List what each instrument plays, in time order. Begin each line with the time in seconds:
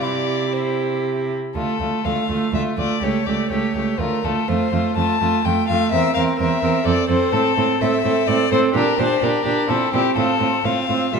0.02 cello C3, violin E4 D5, viola G4
0.53 violin E4 C5
1.55 cello D2, viola A3, violin F4 A4
1.80 cello D2, viola A3, violin F4
2.04 cello D2, viola A3, violin F4 F5
2.29 cello D2, viola A3, violin F4
2.53 cello D2, viola A3, violin F4 E5
2.78 cello D2, viola A3, violin F4 D5
3.02 cello C#2, viola A3, violin G4 C#5
3.26 cello C#2, viola A3, violin G4 D5
3.51 cello C#2, viola A3, violin G4 C#5
3.75 cello C#2, viola A3, violin G4
3.99 cello D2, viola A3, violin F4 A#4
4.24 cello D2, viola A3, violin F4 A4
4.48 cello F2, viola A3, violin F4 C5
4.72 cello F2, viola A3, violin F4
4.96 cello F2, viola A3, violin F4 A5
5.21 cello F2, viola A3, violin F4
5.45 cello F2, viola A3, violin F4 G5
5.68 cello F2, viola A3, violin F4 F5
5.92 cello E2, viola C4, violin A#4 E5
6.14 cello E2, viola C4, violin A#4 F5
6.39 cello E2, viola C4, violin A#4 E5
6.62 cello E2, viola C4, violin A#4
6.85 cello F2, viola C4, violin A4 D5
7.09 cello F2, viola C4, violin A4 C5
7.32 cello A2, viola C4, violin A4
7.56 cello A2, viola C4, violin A4
7.81 cello A2, viola C4, violin A4 E5
8.04 cello A2, viola C4, violin A4
8.27 cello A2, viola C4, violin A4 D5
8.51 cello A2, viola C4, violin A4 C5
8.74 cello A#2, viola D4, violin G4 A#4
8.98 cello A#2, viola D4, violin G4 C5
9.21 cello A#2, viola D4, violin G4 A#4
9.45 cello A#2, viola D4, violin G4
9.69 cello A#2, viola C4, violin E4 A4
9.93 cello A#2, viola C4, violin E4 G4
10.16 cello A2, viola C4, violin F4 A4
10.40 cello A2, viola C4, violin F4
10.64 cello A2, viola C4, violin F4 F5
10.89 cello A2, viola C4, violin F4
11.13 cello A#2, viola G3, violin F4 E5